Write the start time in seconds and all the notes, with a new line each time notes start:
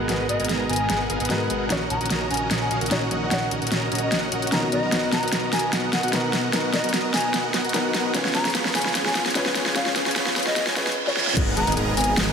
Already playing: D#3 G#3 B3 F#4 A#4 B4
0.07 G#1 G#3 B3 F#4 G#4 A#4 B4 D#5 F#5, snare, closed hi-hat
0.29 G#1 B3 G#4 A#4 D#5 F#5, closed hi-hat
0.40 G#1 B3 G#4 A#4 D#5 F#5, closed hi-hat
0.45 closed hi-hat
0.49 G#1 B3 G#4 A#4 D#5 A#5, snare, closed hi-hat
0.69 G#1 B3 G#4 A#4 D#5 G#5 A#5, closed hi-hat
0.73 closed hi-hat
0.76 closed hi-hat
0.90 G#1 B3 G#4 A#4 D#5 F#5, snare, closed hi-hat
1.10 G#1 B3 G#4 A#4 D#5 F5, closed hi-hat
1.20 G#1 B3 G#4 A#4 D#5 F#5, closed hi-hat
1.25 G#3, closed hi-hat
1.30 G#2 B3 F#4 G#4 A#4 B4 D#5 F#5, snare, closed hi-hat
1.50 G#1 B3 G#4 A#4 D#5 F#5, closed hi-hat
1.68 A#1 F#3 C#4 D#4 F#4 A#4 C#5 D#5 F#5, snare, closed hi-hat
1.90 A#1 C#4 F#4 A#4 D#5 F#5 A#5, closed hi-hat
2.01 A#1 C#4 F#4 A#4 D#5 F#5, closed hi-hat
2.06 closed hi-hat
2.10 A#1 C#4 F#4 A#4 D#5 A#5, snare, closed hi-hat
2.31 A#1 C#4 F#4 A#4 D#5 G#5 A#5, closed hi-hat
2.34 closed hi-hat
2.37 closed hi-hat
2.51 A#1 C#4 F#4 A#4 D#5 F#5, snare, closed hi-hat
2.61 G#5
2.71 A#1 C#4 F#4 A#4 D#5 F5, closed hi-hat
2.81 A#1 C#4 F#4 A#4 D#5 F#5, closed hi-hat
2.86 D#4, closed hi-hat
2.91 A#1 C#4 F#4 A#4 C#5 D#5 F#5, snare, closed hi-hat
3.11 A#1 C#4 F#4 A#4 D#5 F#5, closed hi-hat
3.29 A#1 C#4 D#4 F#4 A#4 D#5 F#5, snare, closed hi-hat
3.33 C#5
3.51 A#1 C#4 F#4 A#4 D#5 F#5, closed hi-hat
3.62 A#1 C#4 F#4 A#4 D#5 F#5, closed hi-hat
3.67 closed hi-hat
3.71 A#1 C#4 F#4 A#4 D#5 A#5, snare, closed hi-hat
3.92 A#1 C#4 F#4 A#4 D#5 A#5, closed hi-hat
3.95 closed hi-hat
3.98 D#5, closed hi-hat
4.12 A#1 C#4 F#4 A#4 D#5 F#5, snare, closed hi-hat
4.32 A#1 C#4 F#4 A#4 D#5 F#5, closed hi-hat
4.42 closed hi-hat
4.47 B2, closed hi-hat
4.52 A#1 B3 C#4 D#4 F#4 A#4 D#5 A#5, snare, closed hi-hat
4.72 B1 B3 F#4 A#4 D#5 A#5, closed hi-hat
4.83 B1 B3 F#4 A#4 D#5 A#5
4.90 B1 B2 B3 D#4 F#4 A#4 D#5 F#5, snare, closed hi-hat
4.94 A#4
5.12 B1 B3 F#4 A#4 D#5 F#5 A#5, snare, closed hi-hat
5.23 B1 B3 F#4 A#4 D#5 F#5, closed hi-hat
5.28 closed hi-hat
5.33 B1 B3 F#4 A#4 D#5 A#5, snare, closed hi-hat
5.53 B1 B3 F#4 A#4 D#5 G#5 A#5, snare, closed hi-hat, open hi-hat
5.59 closed hi-hat
5.73 B1 B3 F#4 A#4 D#5 F#5, snare, closed hi-hat
5.93 B1 B3 F#4 A#4 D#5 F#5, snare, closed hi-hat
6.03 B1 B3 F#4 A#4 D#5 F#5, closed hi-hat
6.08 B2, closed hi-hat
6.13 B1 B3 D#4 F#4 A#4 D#5 F#5, snare, closed hi-hat
6.33 B1 B3 F#4 A#4 D#5 F#5, snare, closed hi-hat
6.51 B1 B2 B3 D#4 F#4 A#4 D#5 F#5, snare, closed hi-hat
6.55 A#4
6.73 B1 B3 F#4 A#4 D#5 F#5, snare, closed hi-hat
6.84 B1 B3 F#4 A#4 D#5 F#5, closed hi-hat
6.89 closed hi-hat
6.94 B1 B3 F#4 A#4 D#5 A#5, snare, closed hi-hat
7.14 B1 B3 F#4 A#4 D#5 G#5 A#5, snare, closed hi-hat, open hi-hat
7.21 closed hi-hat
7.34 B1 B3 F#4 A#4 D#5 F#5, snare, closed hi-hat
7.54 B1 B3 F#4 A#4 D#5 F#5, snare, closed hi-hat
7.64 B1 B3 F#4 A#4 D#5 F#5, closed hi-hat
7.69 B2, closed hi-hat
7.74 B1 B3 D#4 F#4 A#4 D#5 F#5, snare, closed hi-hat
7.94 B1 B3 F#4 A#4 D#5 F#5, snare, closed hi-hat
8.12 C#2 C#3 F3 G#3 B3 C#4 F4 G#4 B4 C#5 G#5, snare, closed hi-hat
8.25 snare
8.35 C#2 B3 F4 G#4 C#5 G#5 A#5, snare, closed hi-hat
8.45 C#2 B3 F4 G#4 C#5 G#5, snare, closed hi-hat
8.50 closed hi-hat
8.55 C#2 B3 F4 G#4 C#5 B5, snare, closed hi-hat
8.65 snare
8.75 C#2 B3 F4 G#4 C#5 G#5 B5, snare, closed hi-hat, open hi-hat
8.82 snare, closed hi-hat
8.95 C#2 B3 F4 G#4 C#5 G#5, snare, closed hi-hat
9.06 G#5, snare
9.15 C#2 B3 F4 G#4 C#5 F5, snare, closed hi-hat
9.26 C#2 B3 F4 G#4 C#5 G#5, snare, closed hi-hat
9.30 C#3, closed hi-hat
9.35 C#2 B3 C#4 F4 G#4 B4 C#5 G#5, snare, closed hi-hat
9.46 snare
9.55 C#2 B3 F4 G#4 C#5 G#5, snare, closed hi-hat
9.66 snare
9.74 C#2 C#3 B3 C#4 F4 G#4 B4 C#5 F5 G#5, snare, closed hi-hat
9.86 snare
9.96 C#2 B3 F4 G#4 C#5 G#5, snare, closed hi-hat
10.06 C#2 B3 F4 G#4 C#5 G#5, snare, closed hi-hat
10.11 closed hi-hat
10.16 C#2 B3 F4 G#4 C#5 B5, snare, closed hi-hat
10.26 snare
10.36 C#2 B3 F4 G#4 C#5 B5, snare, closed hi-hat, open hi-hat
10.43 D#5, snare, closed hi-hat
10.56 C#2 B3 F4 G#4 C#5 G#5, snare, closed hi-hat, reverse cymbal
10.67 snare
10.75 C#2 C#3 B3 C#4 F4 G#4 B4 C#5 G#5, snare, closed hi-hat
10.87 snare, closed hi-hat
10.92 closed hi-hat
11.06 C#3 C#4 F4 C#5, snare
11.17 snare
11.27 snare
11.37 G#1 B3 G#4 A#4 D#5 F#5, kick, closed hi-hat, crash, impact
11.57 G#1 B3 G#4 A#4 D#5 F#5 A#5, closed hi-hat
11.67 G#1 B3 G#4 A#4 D#5 F#5, closed hi-hat
11.72 closed hi-hat
11.77 G#1 B3 G#4 A#4 D#5 A#5, closed hi-hat
11.97 G#1 B3 G#4 A#4 D#5 G#5 A#5, closed hi-hat, open hi-hat
12.04 closed hi-hat
12.17 G#1 B3 G#4 A#4 D#5 F#5, snare, closed hi-hat